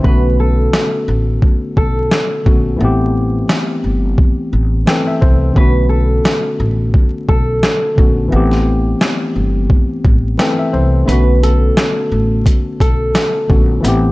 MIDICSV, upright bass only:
0, 0, Header, 1, 2, 480
1, 0, Start_track
1, 0, Tempo, 689655
1, 31, Time_signature, 4, 2, 24, 8
1, 9827, End_track
2, 0, Start_track
2, 0, Title_t, "Upright bass"
2, 0, Program_c, 0, 32
2, 32, Note_on_c, 0, 35, 102
2, 453, Note_off_c, 0, 35, 0
2, 751, Note_on_c, 0, 33, 102
2, 962, Note_off_c, 0, 33, 0
2, 1232, Note_on_c, 0, 35, 85
2, 1442, Note_off_c, 0, 35, 0
2, 1714, Note_on_c, 0, 34, 98
2, 1924, Note_off_c, 0, 34, 0
2, 1952, Note_on_c, 0, 33, 106
2, 2373, Note_off_c, 0, 33, 0
2, 2672, Note_on_c, 0, 31, 87
2, 2882, Note_off_c, 0, 31, 0
2, 3151, Note_on_c, 0, 33, 89
2, 3362, Note_off_c, 0, 33, 0
2, 3634, Note_on_c, 0, 36, 92
2, 3844, Note_off_c, 0, 36, 0
2, 3872, Note_on_c, 0, 35, 107
2, 4293, Note_off_c, 0, 35, 0
2, 4592, Note_on_c, 0, 33, 99
2, 4802, Note_off_c, 0, 33, 0
2, 5072, Note_on_c, 0, 35, 88
2, 5282, Note_off_c, 0, 35, 0
2, 5555, Note_on_c, 0, 34, 99
2, 5764, Note_off_c, 0, 34, 0
2, 5792, Note_on_c, 0, 33, 104
2, 6213, Note_off_c, 0, 33, 0
2, 6513, Note_on_c, 0, 31, 88
2, 6723, Note_off_c, 0, 31, 0
2, 6993, Note_on_c, 0, 33, 89
2, 7203, Note_off_c, 0, 33, 0
2, 7473, Note_on_c, 0, 36, 92
2, 7683, Note_off_c, 0, 36, 0
2, 7713, Note_on_c, 0, 35, 105
2, 8133, Note_off_c, 0, 35, 0
2, 8433, Note_on_c, 0, 33, 97
2, 8643, Note_off_c, 0, 33, 0
2, 8912, Note_on_c, 0, 35, 86
2, 9122, Note_off_c, 0, 35, 0
2, 9395, Note_on_c, 0, 34, 95
2, 9604, Note_off_c, 0, 34, 0
2, 9632, Note_on_c, 0, 33, 105
2, 9827, Note_off_c, 0, 33, 0
2, 9827, End_track
0, 0, End_of_file